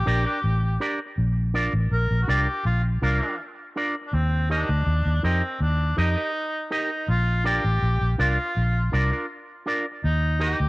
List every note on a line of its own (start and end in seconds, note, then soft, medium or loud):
0.00 0.81 G4 medium
0.06 0.24 A#1 medium
0.06 0.24 D4 medium
0.06 0.25 G4 medium
0.06 0.25 A#4 medium
0.06 0.24 D5 loud
0.25 0.39 D4 medium
0.25 0.39 G4 medium
0.25 0.39 A#4 medium
0.25 0.39 D5 medium
0.44 0.77 A1 medium
0.80 0.98 D4 medium
0.80 0.99 G4 medium
0.80 0.99 A#4 medium
0.80 0.99 D5 loud
1.18 1.68 A#1 loud
1.54 1.72 D4 medium
1.54 1.72 F4 medium
1.54 1.73 A#4 loud
1.54 1.73 D5 medium
1.73 1.89 A1 medium
1.91 2.08 A#1 medium
1.91 2.20 A#4 loud
2.11 2.26 A#1 medium
2.22 2.31 F#4 medium
2.28 2.45 C2 medium
2.28 2.46 D4 medium
2.28 2.46 F4 medium
2.28 2.65 G4 loud
2.28 2.47 A#4 medium
2.28 2.47 D5 medium
2.65 2.98 A#1 medium
2.65 2.82 F4 medium
3.02 3.19 C2 loud
3.02 3.37 A#3 medium
3.02 3.20 D4 medium
3.02 3.20 F4 medium
3.02 3.21 A#4 medium
3.02 3.20 D5 medium
3.21 3.35 D4 soft
3.21 3.35 F4 medium
3.21 3.35 A#4 medium
3.21 3.34 D5 medium
3.76 3.94 D4 medium
3.76 3.94 F4 medium
3.76 3.94 A#4 medium
3.76 3.95 D5 medium
4.07 4.15 D4 medium
4.13 4.63 D#2 loud
4.13 4.50 C4 medium
4.50 5.20 D4 medium
4.50 4.68 D#4 medium
4.50 4.68 G4 medium
4.50 4.68 A#4 medium
4.50 4.69 D#5 medium
4.69 4.85 D2 medium
4.86 5.04 D#2 loud
5.05 5.21 D#2 medium
5.23 5.41 F2 medium
5.23 5.58 C4 medium
5.23 5.41 D#4 medium
5.23 5.42 G4 medium
5.23 5.42 A#4 medium
5.23 5.42 D#5 medium
5.60 5.94 D#2 loud
5.60 5.95 D4 medium
5.97 6.15 F2 medium
5.97 6.15 D#4 medium
5.97 6.68 D#4 loud
5.97 6.16 G4 medium
5.97 6.16 A#4 medium
5.97 6.15 D#5 medium
6.16 6.30 D#4 soft
6.16 6.30 G4 medium
6.16 6.30 A#4 medium
6.16 6.29 D#5 medium
6.71 6.89 D#4 medium
6.71 7.06 D#4 medium
6.71 6.89 G4 medium
6.71 6.90 A#4 medium
6.71 6.90 D#5 medium
7.08 7.59 A#1 medium
7.08 7.43 F4 loud
7.44 7.63 D4 medium
7.44 7.63 F4 medium
7.44 8.15 G4 loud
7.44 7.63 A#4 medium
7.44 7.64 D5 loud
7.64 7.80 A1 medium
7.82 7.99 A#1 medium
8.01 8.17 A#1 medium
8.18 8.36 C2 medium
8.18 8.37 D4 medium
8.18 8.37 F4 medium
8.18 8.89 F4 medium
8.18 8.37 A#4 medium
8.18 8.38 D5 medium
8.57 8.89 A#1 loud
8.92 9.10 C2 medium
8.92 9.11 D4 medium
8.92 9.11 F4 medium
8.92 9.11 A#4 medium
8.92 9.10 D5 medium
9.11 9.26 D4 soft
9.11 9.25 F4 medium
9.11 9.25 A#4 medium
9.11 9.25 D5 medium
9.66 9.84 D4 medium
9.66 9.85 F4 medium
9.66 9.85 A#4 medium
9.66 9.85 D5 medium
10.04 10.54 D#2 loud
10.04 10.38 D#4 medium
10.40 10.58 D#4 medium
10.40 10.58 G4 loud
10.40 10.69 G4 medium
10.40 10.59 A#4 loud
10.40 10.59 D#5 loud
10.60 10.69 D2 medium